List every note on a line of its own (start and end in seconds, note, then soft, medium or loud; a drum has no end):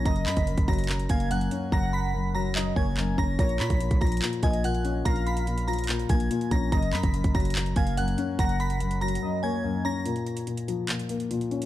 0.05 0.28 F#1 loud
0.05 0.46 F#2 medium
0.05 0.45 D#5 loud
0.05 0.22 A#5 loud
0.05 0.23 A#6 medium
0.05 kick loud
0.05 closed hi-hat medium
0.16 closed hi-hat soft
0.26 0.36 F#2 medium
0.26 0.66 B5 medium
0.26 0.66 B6 medium
0.26 clap loud
0.26 closed hi-hat medium
0.37 0.57 F#1 loud
0.37 kick medium
0.37 closed hi-hat medium
0.47 0.87 F#2 medium
0.47 closed hi-hat medium
0.57 0.68 F#1 loud
0.57 kick loud
0.57 closed hi-hat medium
0.68 1.08 F#1 loud
0.68 1.72 F#3 loud
0.68 0.85 A#5 medium
0.68 0.85 A#6 medium
0.68 kick loud
0.68 closed hi-hat soft
0.73 closed hi-hat medium
0.78 closed hi-hat medium
0.84 closed hi-hat medium
0.88 1.29 F#2 medium
0.88 clap loud
0.88 closed hi-hat medium
0.99 closed hi-hat medium
1.09 1.50 F#1 loud
1.09 2.14 A#3 medium
1.09 1.30 F5 medium
1.09 1.26 G#5 medium
1.09 1.27 G#6 medium
1.09 kick loud
1.09 closed hi-hat medium
1.20 closed hi-hat medium
1.30 1.71 F#2 loud
1.30 1.47 F#5 medium
1.30 1.48 F#6 medium
1.30 closed hi-hat medium
1.41 closed hi-hat medium
1.51 2.56 C#4 medium
1.51 closed hi-hat medium
1.72 2.72 F#1 loud
1.72 2.12 F#2 medium
1.72 2.11 F#5 loud
1.72 1.89 A#5 loud
1.72 1.90 A#6 medium
1.72 kick loud
1.93 2.32 B5 medium
1.93 2.33 B6 medium
2.14 2.54 F#2 medium
2.35 3.39 F#3 medium
2.35 2.51 A#5 medium
2.35 2.52 A#6 medium
2.55 2.96 F#2 medium
2.55 2.75 D#5 medium
2.55 clap loud
2.76 3.16 F#1 loud
2.76 3.39 A#3 medium
2.76 2.96 C#5 medium
2.76 3.15 G#5 medium
2.76 3.16 G#6 medium
2.76 kick loud
2.97 3.39 F#2 loud
2.97 clap loud
3.18 3.38 F#1 loud
3.18 3.39 C#4 medium
3.18 3.35 A#5 medium
3.18 3.35 A#6 medium
3.18 kick medium
3.39 3.61 A#1 loud
3.39 3.79 A#2 medium
3.39 3.78 C#5 loud
3.39 3.56 A#5 medium
3.39 3.56 A#6 medium
3.39 kick loud
3.39 closed hi-hat medium
3.49 closed hi-hat soft
3.60 3.70 A#2 loud
3.60 3.99 B5 medium
3.60 3.99 B6 medium
3.60 clap medium
3.60 closed hi-hat medium
3.70 3.90 A#1 loud
3.70 kick medium
3.70 closed hi-hat medium
3.80 4.20 A#2 medium
3.80 closed hi-hat medium
3.91 4.01 A#1 loud
3.91 kick loud
3.91 closed hi-hat medium
4.01 4.21 A#1 loud
4.01 5.06 F3 medium
4.01 4.18 A#5 medium
4.01 4.18 A#6 medium
4.01 kick medium
4.01 closed hi-hat soft
4.07 closed hi-hat medium
4.12 closed hi-hat medium
4.17 closed hi-hat medium
4.22 4.63 A#2 medium
4.22 clap loud
4.22 closed hi-hat medium
4.33 closed hi-hat medium
4.43 5.03 A#1 loud
4.43 5.47 A#3 medium
4.43 4.63 D#5 medium
4.43 4.60 G#5 medium
4.43 4.60 G#6 medium
4.43 kick loud
4.43 closed hi-hat medium
4.53 closed hi-hat medium
4.64 5.04 A#2 medium
4.64 4.81 F#5 medium
4.64 4.81 F#6 medium
4.64 closed hi-hat medium
4.75 closed hi-hat medium
4.85 5.89 C#4 medium
4.85 closed hi-hat medium
5.05 6.06 A#1 loud
5.05 5.46 A#2 medium
5.05 5.45 F5 loud
5.05 5.22 A#5 loud
5.05 5.23 A#6 medium
5.05 kick loud
5.05 closed hi-hat medium
5.16 closed hi-hat soft
5.27 5.66 B5 medium
5.27 5.66 B6 medium
5.27 closed hi-hat medium
5.37 closed hi-hat medium
5.47 5.88 A#2 medium
5.47 closed hi-hat medium
5.58 closed hi-hat medium
5.68 6.72 F3 medium
5.68 5.84 A#5 medium
5.68 5.85 A#6 medium
5.68 closed hi-hat soft
5.73 closed hi-hat medium
5.79 closed hi-hat medium
5.84 closed hi-hat medium
5.89 6.29 A#2 medium
5.89 clap loud
5.89 closed hi-hat medium
5.99 closed hi-hat medium
6.09 6.30 A#1 loud
6.09 6.72 A#3 medium
6.09 6.49 G#5 medium
6.09 6.49 G#6 medium
6.09 kick loud
6.09 closed hi-hat medium
6.20 closed hi-hat medium
6.31 6.72 A#2 medium
6.31 closed hi-hat medium
6.41 closed hi-hat medium
6.51 6.71 A#1 loud
6.51 6.72 C#4 medium
6.51 6.68 A#5 medium
6.51 6.69 A#6 medium
6.51 kick medium
6.51 closed hi-hat medium
6.72 6.95 F#1 loud
6.72 7.12 F#2 medium
6.72 7.11 D#5 loud
6.72 6.89 A#5 loud
6.72 6.89 A#6 medium
6.72 kick loud
6.72 closed hi-hat medium
6.82 closed hi-hat soft
6.93 7.03 F#2 loud
6.93 7.32 B5 medium
6.93 7.33 B6 medium
6.93 clap loud
6.93 closed hi-hat medium
7.03 7.24 F#1 loud
7.03 kick medium
7.03 closed hi-hat medium
7.14 7.54 F#2 medium
7.14 closed hi-hat medium
7.24 7.34 F#1 loud
7.24 kick loud
7.24 closed hi-hat medium
7.35 7.75 F#1 loud
7.35 8.39 F#3 loud
7.35 7.51 A#5 medium
7.35 7.52 A#6 medium
7.35 kick medium
7.35 closed hi-hat soft
7.40 closed hi-hat medium
7.45 closed hi-hat medium
7.50 closed hi-hat medium
7.55 7.96 F#2 medium
7.55 clap loud
7.55 closed hi-hat medium
7.66 closed hi-hat medium
7.76 8.16 F#1 loud
7.76 8.81 A#3 medium
7.76 7.96 F5 medium
7.76 7.93 G#5 medium
7.76 7.94 G#6 medium
7.76 kick loud
7.76 closed hi-hat medium
7.87 closed hi-hat medium
7.97 8.37 F#2 medium
7.97 8.14 F#5 medium
7.97 8.15 F#6 medium
7.97 closed hi-hat medium
8.08 closed hi-hat medium
8.18 9.22 C#4 medium
8.18 closed hi-hat medium
8.39 9.19 F#1 loud
8.39 8.79 F#2 medium
8.39 8.78 F#5 loud
8.39 8.56 A#5 loud
8.39 8.56 A#6 medium
8.39 kick loud
8.39 closed hi-hat medium
8.49 closed hi-hat soft
8.60 8.99 B5 medium
8.60 8.99 B6 medium
8.60 closed hi-hat medium
8.70 closed hi-hat medium
8.80 9.21 F#2 medium
8.80 closed hi-hat medium
8.91 closed hi-hat medium
9.01 10.06 F#3 medium
9.01 9.18 A#5 medium
9.01 9.19 A#6 medium
9.01 closed hi-hat soft
9.08 closed hi-hat medium
9.15 closed hi-hat medium
9.22 9.63 F#2 medium
9.22 9.42 D#5 medium
9.43 10.06 A#3 medium
9.43 9.63 C#5 medium
9.43 9.82 G#5 medium
9.43 9.83 G#6 medium
9.64 10.06 F#2 medium
9.85 10.05 C#4 medium
9.85 10.02 A#5 loud
9.85 10.02 A#6 medium
10.05 10.46 A#2 medium
10.05 closed hi-hat medium
10.16 closed hi-hat soft
10.27 closed hi-hat medium
10.37 closed hi-hat medium
10.47 10.87 A#2 medium
10.47 closed hi-hat medium
10.57 closed hi-hat medium
10.68 11.66 F3 medium
10.68 closed hi-hat medium
10.88 11.29 A#2 medium
10.88 clap loud
10.88 closed hi-hat medium
10.99 closed hi-hat medium
11.09 11.66 A#3 medium
11.09 closed hi-hat medium
11.20 closed hi-hat medium
11.31 11.66 A#2 medium
11.31 closed hi-hat medium
11.41 closed hi-hat soft
11.51 11.66 C#4 medium
11.51 closed hi-hat soft
11.62 closed hi-hat medium